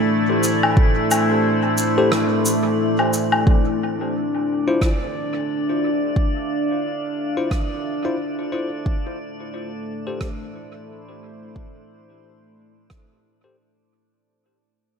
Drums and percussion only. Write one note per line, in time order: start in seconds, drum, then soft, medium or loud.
0.43 cabasa medium
0.63 low woodblock medium
0.77 kick loud
1.11 cabasa medium
1.11 low woodblock medium
1.78 cabasa medium
2.12 cross-stick medium
2.46 cabasa medium
2.99 low woodblock medium
3.13 cabasa medium
3.32 low woodblock medium
3.47 kick loud
4.82 kick loud
4.82 cross-stick medium
6.16 kick loud
7.51 kick loud
7.51 cross-stick medium
8.86 kick loud
10.21 kick loud
10.21 cross-stick medium
11.56 kick loud
12.90 kick medium
12.90 cross-stick medium